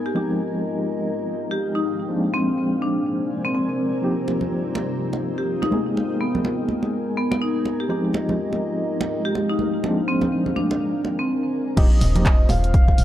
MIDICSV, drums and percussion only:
0, 0, Header, 1, 2, 480
1, 0, Start_track
1, 0, Key_signature, -3, "major"
1, 0, Tempo, 483871
1, 158, Time_signature, 4, 2, 24, 8
1, 12940, End_track
2, 0, Start_track
2, 0, Title_t, "Drums"
2, 4244, Note_on_c, 9, 62, 44
2, 4343, Note_off_c, 9, 62, 0
2, 4373, Note_on_c, 9, 64, 65
2, 4472, Note_off_c, 9, 64, 0
2, 4715, Note_on_c, 9, 62, 69
2, 4814, Note_off_c, 9, 62, 0
2, 5089, Note_on_c, 9, 62, 48
2, 5188, Note_off_c, 9, 62, 0
2, 5582, Note_on_c, 9, 62, 65
2, 5676, Note_on_c, 9, 63, 59
2, 5681, Note_off_c, 9, 62, 0
2, 5775, Note_off_c, 9, 63, 0
2, 5924, Note_on_c, 9, 62, 43
2, 6023, Note_off_c, 9, 62, 0
2, 6297, Note_on_c, 9, 64, 71
2, 6299, Note_on_c, 9, 63, 49
2, 6395, Note_on_c, 9, 62, 70
2, 6397, Note_off_c, 9, 64, 0
2, 6398, Note_off_c, 9, 63, 0
2, 6494, Note_off_c, 9, 62, 0
2, 6632, Note_on_c, 9, 63, 53
2, 6731, Note_off_c, 9, 63, 0
2, 6772, Note_on_c, 9, 62, 45
2, 6871, Note_off_c, 9, 62, 0
2, 7258, Note_on_c, 9, 62, 73
2, 7357, Note_off_c, 9, 62, 0
2, 7593, Note_on_c, 9, 62, 48
2, 7692, Note_off_c, 9, 62, 0
2, 8078, Note_on_c, 9, 62, 69
2, 8177, Note_off_c, 9, 62, 0
2, 8223, Note_on_c, 9, 64, 80
2, 8323, Note_off_c, 9, 64, 0
2, 8458, Note_on_c, 9, 62, 51
2, 8557, Note_off_c, 9, 62, 0
2, 8935, Note_on_c, 9, 62, 80
2, 9034, Note_off_c, 9, 62, 0
2, 9279, Note_on_c, 9, 62, 52
2, 9378, Note_off_c, 9, 62, 0
2, 9512, Note_on_c, 9, 63, 60
2, 9612, Note_off_c, 9, 63, 0
2, 9760, Note_on_c, 9, 62, 69
2, 9859, Note_off_c, 9, 62, 0
2, 10132, Note_on_c, 9, 63, 63
2, 10136, Note_on_c, 9, 64, 86
2, 10137, Note_on_c, 9, 62, 51
2, 10231, Note_off_c, 9, 63, 0
2, 10235, Note_off_c, 9, 64, 0
2, 10236, Note_off_c, 9, 62, 0
2, 10379, Note_on_c, 9, 64, 72
2, 10478, Note_off_c, 9, 64, 0
2, 10479, Note_on_c, 9, 63, 53
2, 10578, Note_off_c, 9, 63, 0
2, 10623, Note_on_c, 9, 62, 76
2, 10722, Note_off_c, 9, 62, 0
2, 10958, Note_on_c, 9, 62, 51
2, 11057, Note_off_c, 9, 62, 0
2, 11678, Note_on_c, 9, 36, 114
2, 11678, Note_on_c, 9, 42, 57
2, 11678, Note_on_c, 9, 49, 103
2, 11777, Note_off_c, 9, 36, 0
2, 11777, Note_off_c, 9, 42, 0
2, 11777, Note_off_c, 9, 49, 0
2, 11914, Note_on_c, 9, 62, 56
2, 11917, Note_on_c, 9, 46, 106
2, 12014, Note_off_c, 9, 62, 0
2, 12016, Note_off_c, 9, 46, 0
2, 12058, Note_on_c, 9, 42, 66
2, 12058, Note_on_c, 9, 63, 64
2, 12059, Note_on_c, 9, 64, 91
2, 12157, Note_off_c, 9, 63, 0
2, 12158, Note_off_c, 9, 42, 0
2, 12158, Note_off_c, 9, 64, 0
2, 12158, Note_on_c, 9, 36, 118
2, 12158, Note_on_c, 9, 42, 54
2, 12160, Note_on_c, 9, 39, 127
2, 12257, Note_off_c, 9, 36, 0
2, 12257, Note_off_c, 9, 42, 0
2, 12260, Note_off_c, 9, 39, 0
2, 12390, Note_on_c, 9, 62, 91
2, 12397, Note_on_c, 9, 46, 97
2, 12489, Note_off_c, 9, 62, 0
2, 12497, Note_off_c, 9, 46, 0
2, 12538, Note_on_c, 9, 42, 64
2, 12638, Note_off_c, 9, 42, 0
2, 12638, Note_on_c, 9, 36, 116
2, 12638, Note_on_c, 9, 42, 54
2, 12737, Note_off_c, 9, 36, 0
2, 12737, Note_off_c, 9, 42, 0
2, 12779, Note_on_c, 9, 36, 62
2, 12781, Note_on_c, 9, 62, 60
2, 12878, Note_off_c, 9, 36, 0
2, 12878, Note_on_c, 9, 46, 107
2, 12880, Note_off_c, 9, 62, 0
2, 12940, Note_off_c, 9, 46, 0
2, 12940, End_track
0, 0, End_of_file